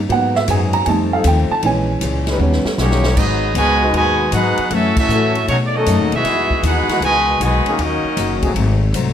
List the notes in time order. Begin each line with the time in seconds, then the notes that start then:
0.09 G#2 F#3 A#3 B3 D#4 F#5, ride
0.35 E5, snare
0.48 F#2 G#2 F#3 B3 D#4 G#4 G#5, hi-hat pedal, ride
0.73 A#5, ride
0.85 F2 D#3 G3 A3 C4 D#4 G#5 A5, ride
1.13 F3 C4 D#4 A4 F5
1.24 D#2 F2 D#3 A3 C4 G5, hi-hat pedal, ride
1.51 A5
1.63 A#1 A#2 E3 G#3 C#4 G#5, ride
2.01 C#2 A#2 E3 G#3 C#4, hi-hat pedal, ride
2.27 G3 C#4 D#4 B4, snare, ride
2.39 D#2 D#3 G3 B3 C#4 G4, high tom
2.52 snare
2.64 muted upright bass stroke, snare
2.78 B1 D#3 G3 A#3 B3 C#4 D#4 G4 C#5, snare, hi-hat pedal
2.91 snare
3.03 snare
3.16 G#1 G#2 F#3 B3 D#4 F#4 G#4 D#5, kick, crash
3.54 C#2 G#2 B2 D#3 F#3 G#3 B3 D#4 F#4 B4 D#5 G#5, hi-hat pedal, ride
3.81 G#3 D#4 F#4 B4
3.93 D#2 G#2 B2 D#3 F#3 G#3 B3 D#4 F#4 B4 D#5 G#5, ride
4.32 G#2 F#3 B3 D#4 F#4 G#4 B4 F#5, hi-hat pedal, ride
4.58 muted upright bass stroke, ride
4.70 F#2 E3 A3 C#4 E4 F#4 A4 E5, ride
4.96 A3 C#4 E4 F#4 A4 E5, kick, crash
5.08 F#2 A2 E3 F#3 A3 C#4, hi-hat pedal
5.12 C#4 E4 A4
5.35 ride
5.47 B2 F#3 A3 C#4 D#4 F#4 G#4 C#5, ride
5.66 D5
5.74 D#3 F#3 A3 C#4 D#4 F#4 A4 D#5
5.86 F#2 B2 A3 D#4 G#4, hi-hat pedal, ride
5.99 D#2
6.12 B1 G#3 B3 E4 F#4 G#4 E5, ride
6.24 E2 E3 G#3 D#4 F#4, snare, ride
6.50 muted upright bass stroke, kick
6.63 D#2 E3 G#3 B3 D#4 F#4 G#4 B4 F#5, hi-hat pedal, ride
6.88 E3 G#3 D#4 F#4, muted upright bass stroke, snare, ride
7.00 C#2 B2 D#3 E3 G#3 D#4 F#4 B4, ride
7.04 D#5 G#5
7.40 B1 B2 D#3 E3 G#3 D#4 F#4 B4 G#5, hi-hat pedal, ride
7.44 D#5
7.66 D#3 A#3 C#4 G#4, ride
7.78 D#2 D#3 F#3 A#3 C#4 D#4 F#4 A#4 D#5, ride
8.04 muted upright bass stroke
8.17 F#1 D#3 A#3 C#4 F#4, hi-hat pedal, ride
8.41 F#3 A3 C4 G#4, kick, ride
8.54 G#1 G#2 F#3 A3 C4, ride
8.92 C2 G#2 F#3 A3 C4, hi-hat pedal, ride